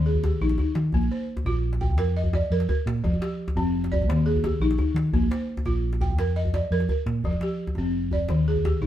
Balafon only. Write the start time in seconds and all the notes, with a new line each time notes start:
Already playing: D#3
0.06 G#4
0.24 G4
0.42 D#4
0.59 D#4
0.94 A#3
1.11 C5
1.46 F4
1.81 G5
1.99 A#4
2.17 D#5
2.35 D5
2.52 A#4
2.69 A#4
3.04 F3
3.22 G4
3.57 C4
3.92 D5
4.09 D#3
4.26 G#4
4.44 G4
4.62 D#4
4.79 D#4
5.14 A#3
5.31 C5
5.66 F4
6.01 G5
6.19 A#4
6.36 D#5
6.54 D5
6.72 A#4
6.90 A#4
7.25 F3
7.43 G4
7.78 C4
8.13 D5
8.30 D#3
8.48 G#4
8.65 G4
8.82 D#4